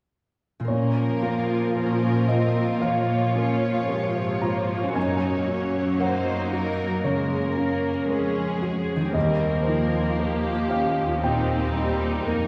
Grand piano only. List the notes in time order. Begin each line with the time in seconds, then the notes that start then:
0.68 A#2 C#5
1.23 A#3
1.77 A#4
2.28 F4 D#5
2.81 F3 F5
3.36 A#3
3.88 A#4
4.42 F4 A#5
4.95 F#2 G#5
5.48 C#4
6.00 A#4 F#5
6.53 F#4
7.04 C#3 C#5
7.57 C#4
8.10 A#4
8.62 F#4
9.14 D#2 D#5
9.67 D#4
10.20 A#4
10.71 G4 F5
11.23 A#2 G5
11.76 D#4
12.28 A#4